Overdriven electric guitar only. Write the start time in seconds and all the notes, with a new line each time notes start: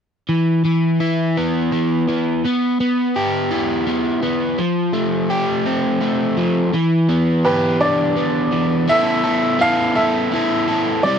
0.29 E3
0.65 E3
1.00 E4
1.37 B3
1.72 E3
2.09 E3
2.45 B3
2.80 B3
3.16 G4
3.51 E4
3.87 B3
4.22 B3
4.58 F3
4.93 A3
5.30 G4
5.66 C4
6.01 A3
6.37 F3
6.74 E3
7.09 B3
7.45 G4
7.81 D4
8.16 B3
8.52 E3
8.87 B3 E4 A4
9.24 E4 A4
9.59 B3 E4 A4
9.95 E4 A4
10.31 B3 E4 A4
10.68 E4 A4
11.04 G3 C4 E4 G4